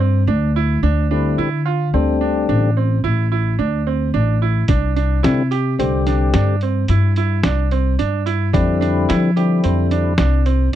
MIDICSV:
0, 0, Header, 1, 5, 480
1, 0, Start_track
1, 0, Key_signature, -1, "minor"
1, 0, Tempo, 550459
1, 724, Time_signature, 7, 2, 24, 8
1, 9376, End_track
2, 0, Start_track
2, 0, Title_t, "Grand piano"
2, 0, Program_c, 0, 0
2, 0, Note_on_c, 0, 60, 63
2, 187, Note_off_c, 0, 60, 0
2, 241, Note_on_c, 0, 62, 69
2, 429, Note_off_c, 0, 62, 0
2, 489, Note_on_c, 0, 64, 67
2, 674, Note_off_c, 0, 64, 0
2, 724, Note_on_c, 0, 62, 76
2, 910, Note_off_c, 0, 62, 0
2, 967, Note_on_c, 0, 62, 69
2, 1153, Note_off_c, 0, 62, 0
2, 1205, Note_on_c, 0, 64, 67
2, 1391, Note_off_c, 0, 64, 0
2, 1443, Note_on_c, 0, 65, 65
2, 1630, Note_off_c, 0, 65, 0
2, 1690, Note_on_c, 0, 60, 69
2, 1875, Note_off_c, 0, 60, 0
2, 1926, Note_on_c, 0, 62, 61
2, 2113, Note_off_c, 0, 62, 0
2, 2170, Note_on_c, 0, 62, 72
2, 2355, Note_off_c, 0, 62, 0
2, 2414, Note_on_c, 0, 60, 61
2, 2597, Note_off_c, 0, 60, 0
2, 2650, Note_on_c, 0, 64, 69
2, 2835, Note_off_c, 0, 64, 0
2, 2893, Note_on_c, 0, 64, 60
2, 3077, Note_off_c, 0, 64, 0
2, 3128, Note_on_c, 0, 62, 69
2, 3314, Note_off_c, 0, 62, 0
2, 3373, Note_on_c, 0, 60, 61
2, 3557, Note_off_c, 0, 60, 0
2, 3609, Note_on_c, 0, 62, 74
2, 3795, Note_off_c, 0, 62, 0
2, 3854, Note_on_c, 0, 64, 60
2, 4038, Note_off_c, 0, 64, 0
2, 4090, Note_on_c, 0, 62, 79
2, 4275, Note_off_c, 0, 62, 0
2, 4328, Note_on_c, 0, 62, 66
2, 4514, Note_off_c, 0, 62, 0
2, 4561, Note_on_c, 0, 64, 67
2, 4750, Note_off_c, 0, 64, 0
2, 4805, Note_on_c, 0, 67, 67
2, 4992, Note_off_c, 0, 67, 0
2, 5051, Note_on_c, 0, 60, 66
2, 5236, Note_off_c, 0, 60, 0
2, 5292, Note_on_c, 0, 62, 62
2, 5477, Note_off_c, 0, 62, 0
2, 5533, Note_on_c, 0, 62, 74
2, 5718, Note_off_c, 0, 62, 0
2, 5778, Note_on_c, 0, 60, 62
2, 5960, Note_off_c, 0, 60, 0
2, 6014, Note_on_c, 0, 64, 63
2, 6198, Note_off_c, 0, 64, 0
2, 6256, Note_on_c, 0, 64, 66
2, 6439, Note_off_c, 0, 64, 0
2, 6492, Note_on_c, 0, 62, 69
2, 6677, Note_off_c, 0, 62, 0
2, 6730, Note_on_c, 0, 60, 62
2, 6915, Note_off_c, 0, 60, 0
2, 6966, Note_on_c, 0, 62, 76
2, 7153, Note_off_c, 0, 62, 0
2, 7203, Note_on_c, 0, 64, 63
2, 7391, Note_off_c, 0, 64, 0
2, 7442, Note_on_c, 0, 62, 79
2, 7630, Note_off_c, 0, 62, 0
2, 7681, Note_on_c, 0, 62, 70
2, 7870, Note_off_c, 0, 62, 0
2, 7924, Note_on_c, 0, 64, 70
2, 8112, Note_off_c, 0, 64, 0
2, 8166, Note_on_c, 0, 67, 63
2, 8353, Note_off_c, 0, 67, 0
2, 8405, Note_on_c, 0, 60, 70
2, 8592, Note_off_c, 0, 60, 0
2, 8644, Note_on_c, 0, 62, 66
2, 8832, Note_off_c, 0, 62, 0
2, 8880, Note_on_c, 0, 62, 74
2, 9069, Note_off_c, 0, 62, 0
2, 9120, Note_on_c, 0, 60, 64
2, 9309, Note_off_c, 0, 60, 0
2, 9376, End_track
3, 0, Start_track
3, 0, Title_t, "Tonewheel organ"
3, 0, Program_c, 1, 16
3, 967, Note_on_c, 1, 60, 54
3, 968, Note_on_c, 1, 50, 53
3, 968, Note_on_c, 1, 55, 54
3, 968, Note_on_c, 1, 64, 65
3, 1302, Note_off_c, 1, 50, 0
3, 1302, Note_off_c, 1, 60, 0
3, 1302, Note_off_c, 1, 64, 0
3, 1303, Note_off_c, 1, 55, 0
3, 1687, Note_on_c, 1, 50, 69
3, 1688, Note_on_c, 1, 60, 69
3, 1689, Note_on_c, 1, 62, 78
3, 1691, Note_on_c, 1, 55, 57
3, 2358, Note_off_c, 1, 50, 0
3, 2359, Note_off_c, 1, 60, 0
3, 2360, Note_off_c, 1, 62, 0
3, 2361, Note_off_c, 1, 55, 0
3, 4563, Note_on_c, 1, 55, 64
3, 4565, Note_on_c, 1, 50, 68
3, 4567, Note_on_c, 1, 60, 59
3, 4568, Note_on_c, 1, 64, 79
3, 4733, Note_off_c, 1, 55, 0
3, 4734, Note_off_c, 1, 50, 0
3, 4735, Note_off_c, 1, 60, 0
3, 4736, Note_off_c, 1, 64, 0
3, 5046, Note_on_c, 1, 50, 64
3, 5047, Note_on_c, 1, 55, 55
3, 5049, Note_on_c, 1, 60, 58
3, 5055, Note_on_c, 1, 67, 67
3, 5719, Note_off_c, 1, 50, 0
3, 5719, Note_off_c, 1, 55, 0
3, 5720, Note_off_c, 1, 60, 0
3, 5723, Note_off_c, 1, 67, 0
3, 7440, Note_on_c, 1, 50, 74
3, 7445, Note_on_c, 1, 55, 73
3, 7445, Note_on_c, 1, 64, 87
3, 7446, Note_on_c, 1, 60, 68
3, 8116, Note_off_c, 1, 50, 0
3, 8118, Note_off_c, 1, 55, 0
3, 8118, Note_off_c, 1, 60, 0
3, 8118, Note_off_c, 1, 64, 0
3, 8162, Note_on_c, 1, 50, 57
3, 8167, Note_on_c, 1, 55, 53
3, 8170, Note_on_c, 1, 60, 52
3, 8171, Note_on_c, 1, 64, 60
3, 8836, Note_off_c, 1, 50, 0
3, 8839, Note_off_c, 1, 55, 0
3, 8841, Note_off_c, 1, 60, 0
3, 8841, Note_off_c, 1, 64, 0
3, 9376, End_track
4, 0, Start_track
4, 0, Title_t, "Upright bass"
4, 0, Program_c, 2, 32
4, 0, Note_on_c, 2, 43, 74
4, 205, Note_off_c, 2, 43, 0
4, 238, Note_on_c, 2, 38, 80
4, 686, Note_off_c, 2, 38, 0
4, 722, Note_on_c, 2, 38, 83
4, 1168, Note_off_c, 2, 38, 0
4, 1207, Note_on_c, 2, 50, 80
4, 1651, Note_off_c, 2, 50, 0
4, 1687, Note_on_c, 2, 38, 67
4, 2131, Note_off_c, 2, 38, 0
4, 2171, Note_on_c, 2, 33, 82
4, 2614, Note_off_c, 2, 33, 0
4, 2651, Note_on_c, 2, 33, 77
4, 3094, Note_off_c, 2, 33, 0
4, 3130, Note_on_c, 2, 38, 74
4, 3574, Note_off_c, 2, 38, 0
4, 3609, Note_on_c, 2, 33, 79
4, 4053, Note_off_c, 2, 33, 0
4, 4089, Note_on_c, 2, 36, 81
4, 4533, Note_off_c, 2, 36, 0
4, 4570, Note_on_c, 2, 48, 85
4, 5014, Note_off_c, 2, 48, 0
4, 5053, Note_on_c, 2, 36, 73
4, 5495, Note_off_c, 2, 36, 0
4, 5533, Note_on_c, 2, 43, 81
4, 5975, Note_off_c, 2, 43, 0
4, 6010, Note_on_c, 2, 43, 87
4, 6454, Note_off_c, 2, 43, 0
4, 6494, Note_on_c, 2, 36, 81
4, 6936, Note_off_c, 2, 36, 0
4, 6979, Note_on_c, 2, 43, 70
4, 7419, Note_off_c, 2, 43, 0
4, 7453, Note_on_c, 2, 41, 90
4, 7895, Note_off_c, 2, 41, 0
4, 7937, Note_on_c, 2, 53, 92
4, 8377, Note_off_c, 2, 53, 0
4, 8412, Note_on_c, 2, 41, 73
4, 8854, Note_off_c, 2, 41, 0
4, 8887, Note_on_c, 2, 36, 82
4, 9332, Note_off_c, 2, 36, 0
4, 9376, End_track
5, 0, Start_track
5, 0, Title_t, "Drums"
5, 4082, Note_on_c, 9, 42, 76
5, 4088, Note_on_c, 9, 36, 100
5, 4170, Note_off_c, 9, 42, 0
5, 4175, Note_off_c, 9, 36, 0
5, 4330, Note_on_c, 9, 42, 48
5, 4417, Note_off_c, 9, 42, 0
5, 4572, Note_on_c, 9, 38, 94
5, 4572, Note_on_c, 9, 42, 73
5, 4659, Note_off_c, 9, 38, 0
5, 4659, Note_off_c, 9, 42, 0
5, 4811, Note_on_c, 9, 42, 57
5, 4898, Note_off_c, 9, 42, 0
5, 5054, Note_on_c, 9, 42, 75
5, 5142, Note_off_c, 9, 42, 0
5, 5290, Note_on_c, 9, 38, 26
5, 5290, Note_on_c, 9, 42, 52
5, 5377, Note_off_c, 9, 38, 0
5, 5377, Note_off_c, 9, 42, 0
5, 5526, Note_on_c, 9, 38, 91
5, 5526, Note_on_c, 9, 42, 77
5, 5613, Note_off_c, 9, 38, 0
5, 5613, Note_off_c, 9, 42, 0
5, 5764, Note_on_c, 9, 42, 55
5, 5851, Note_off_c, 9, 42, 0
5, 6002, Note_on_c, 9, 42, 79
5, 6090, Note_off_c, 9, 42, 0
5, 6245, Note_on_c, 9, 42, 54
5, 6333, Note_off_c, 9, 42, 0
5, 6483, Note_on_c, 9, 38, 102
5, 6483, Note_on_c, 9, 42, 71
5, 6571, Note_off_c, 9, 38, 0
5, 6571, Note_off_c, 9, 42, 0
5, 6727, Note_on_c, 9, 42, 51
5, 6814, Note_off_c, 9, 42, 0
5, 6969, Note_on_c, 9, 42, 63
5, 7056, Note_off_c, 9, 42, 0
5, 7208, Note_on_c, 9, 42, 51
5, 7296, Note_off_c, 9, 42, 0
5, 7448, Note_on_c, 9, 36, 98
5, 7450, Note_on_c, 9, 42, 68
5, 7535, Note_off_c, 9, 36, 0
5, 7537, Note_off_c, 9, 42, 0
5, 7694, Note_on_c, 9, 42, 53
5, 7781, Note_off_c, 9, 42, 0
5, 7933, Note_on_c, 9, 38, 94
5, 7933, Note_on_c, 9, 42, 75
5, 8020, Note_off_c, 9, 38, 0
5, 8020, Note_off_c, 9, 42, 0
5, 8171, Note_on_c, 9, 42, 58
5, 8258, Note_off_c, 9, 42, 0
5, 8403, Note_on_c, 9, 42, 72
5, 8490, Note_off_c, 9, 42, 0
5, 8643, Note_on_c, 9, 42, 59
5, 8730, Note_off_c, 9, 42, 0
5, 8876, Note_on_c, 9, 38, 97
5, 8876, Note_on_c, 9, 42, 71
5, 8963, Note_off_c, 9, 38, 0
5, 8963, Note_off_c, 9, 42, 0
5, 9120, Note_on_c, 9, 42, 59
5, 9208, Note_off_c, 9, 42, 0
5, 9376, End_track
0, 0, End_of_file